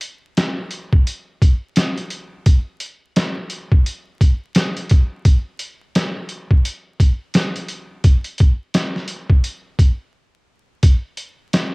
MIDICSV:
0, 0, Header, 1, 2, 480
1, 0, Start_track
1, 0, Tempo, 697674
1, 1694, Time_signature, 4, 2, 24, 8
1, 8081, End_track
2, 0, Start_track
2, 0, Title_t, "Drums"
2, 7, Note_on_c, 9, 42, 80
2, 75, Note_off_c, 9, 42, 0
2, 254, Note_on_c, 9, 42, 90
2, 258, Note_on_c, 9, 38, 107
2, 323, Note_off_c, 9, 42, 0
2, 327, Note_off_c, 9, 38, 0
2, 486, Note_on_c, 9, 42, 72
2, 555, Note_off_c, 9, 42, 0
2, 637, Note_on_c, 9, 36, 92
2, 705, Note_off_c, 9, 36, 0
2, 736, Note_on_c, 9, 42, 93
2, 805, Note_off_c, 9, 42, 0
2, 975, Note_on_c, 9, 36, 99
2, 978, Note_on_c, 9, 42, 68
2, 1044, Note_off_c, 9, 36, 0
2, 1047, Note_off_c, 9, 42, 0
2, 1210, Note_on_c, 9, 42, 88
2, 1217, Note_on_c, 9, 38, 116
2, 1279, Note_off_c, 9, 42, 0
2, 1286, Note_off_c, 9, 38, 0
2, 1359, Note_on_c, 9, 42, 47
2, 1428, Note_off_c, 9, 42, 0
2, 1447, Note_on_c, 9, 42, 68
2, 1516, Note_off_c, 9, 42, 0
2, 1692, Note_on_c, 9, 42, 92
2, 1693, Note_on_c, 9, 36, 116
2, 1761, Note_off_c, 9, 42, 0
2, 1762, Note_off_c, 9, 36, 0
2, 1927, Note_on_c, 9, 42, 80
2, 1996, Note_off_c, 9, 42, 0
2, 2175, Note_on_c, 9, 42, 90
2, 2179, Note_on_c, 9, 38, 108
2, 2243, Note_off_c, 9, 42, 0
2, 2247, Note_off_c, 9, 38, 0
2, 2407, Note_on_c, 9, 42, 71
2, 2475, Note_off_c, 9, 42, 0
2, 2557, Note_on_c, 9, 36, 94
2, 2625, Note_off_c, 9, 36, 0
2, 2656, Note_on_c, 9, 42, 88
2, 2725, Note_off_c, 9, 42, 0
2, 2895, Note_on_c, 9, 36, 97
2, 2898, Note_on_c, 9, 42, 66
2, 2964, Note_off_c, 9, 36, 0
2, 2966, Note_off_c, 9, 42, 0
2, 3129, Note_on_c, 9, 42, 91
2, 3137, Note_on_c, 9, 38, 119
2, 3198, Note_off_c, 9, 42, 0
2, 3205, Note_off_c, 9, 38, 0
2, 3280, Note_on_c, 9, 42, 50
2, 3348, Note_off_c, 9, 42, 0
2, 3368, Note_on_c, 9, 42, 71
2, 3379, Note_on_c, 9, 36, 99
2, 3437, Note_off_c, 9, 42, 0
2, 3448, Note_off_c, 9, 36, 0
2, 3613, Note_on_c, 9, 42, 89
2, 3614, Note_on_c, 9, 36, 115
2, 3681, Note_off_c, 9, 42, 0
2, 3682, Note_off_c, 9, 36, 0
2, 3847, Note_on_c, 9, 42, 79
2, 3916, Note_off_c, 9, 42, 0
2, 4095, Note_on_c, 9, 42, 91
2, 4100, Note_on_c, 9, 38, 108
2, 4164, Note_off_c, 9, 42, 0
2, 4168, Note_off_c, 9, 38, 0
2, 4326, Note_on_c, 9, 42, 72
2, 4395, Note_off_c, 9, 42, 0
2, 4477, Note_on_c, 9, 36, 92
2, 4545, Note_off_c, 9, 36, 0
2, 4576, Note_on_c, 9, 42, 91
2, 4645, Note_off_c, 9, 42, 0
2, 4815, Note_on_c, 9, 36, 96
2, 4818, Note_on_c, 9, 42, 68
2, 4884, Note_off_c, 9, 36, 0
2, 4887, Note_off_c, 9, 42, 0
2, 5050, Note_on_c, 9, 42, 93
2, 5057, Note_on_c, 9, 38, 116
2, 5119, Note_off_c, 9, 42, 0
2, 5126, Note_off_c, 9, 38, 0
2, 5199, Note_on_c, 9, 42, 49
2, 5268, Note_off_c, 9, 42, 0
2, 5287, Note_on_c, 9, 42, 66
2, 5356, Note_off_c, 9, 42, 0
2, 5531, Note_on_c, 9, 42, 89
2, 5533, Note_on_c, 9, 36, 113
2, 5599, Note_off_c, 9, 42, 0
2, 5601, Note_off_c, 9, 36, 0
2, 5671, Note_on_c, 9, 42, 55
2, 5740, Note_off_c, 9, 42, 0
2, 5765, Note_on_c, 9, 42, 80
2, 5780, Note_on_c, 9, 36, 106
2, 5834, Note_off_c, 9, 42, 0
2, 5849, Note_off_c, 9, 36, 0
2, 6014, Note_on_c, 9, 42, 89
2, 6018, Note_on_c, 9, 38, 107
2, 6082, Note_off_c, 9, 42, 0
2, 6086, Note_off_c, 9, 38, 0
2, 6164, Note_on_c, 9, 38, 37
2, 6233, Note_off_c, 9, 38, 0
2, 6245, Note_on_c, 9, 42, 75
2, 6314, Note_off_c, 9, 42, 0
2, 6396, Note_on_c, 9, 36, 91
2, 6464, Note_off_c, 9, 36, 0
2, 6494, Note_on_c, 9, 42, 88
2, 6563, Note_off_c, 9, 42, 0
2, 6734, Note_on_c, 9, 36, 101
2, 6737, Note_on_c, 9, 42, 68
2, 6803, Note_off_c, 9, 36, 0
2, 6806, Note_off_c, 9, 42, 0
2, 7450, Note_on_c, 9, 42, 92
2, 7452, Note_on_c, 9, 36, 116
2, 7519, Note_off_c, 9, 42, 0
2, 7521, Note_off_c, 9, 36, 0
2, 7686, Note_on_c, 9, 42, 78
2, 7755, Note_off_c, 9, 42, 0
2, 7933, Note_on_c, 9, 42, 90
2, 7938, Note_on_c, 9, 38, 110
2, 8002, Note_off_c, 9, 42, 0
2, 8006, Note_off_c, 9, 38, 0
2, 8081, End_track
0, 0, End_of_file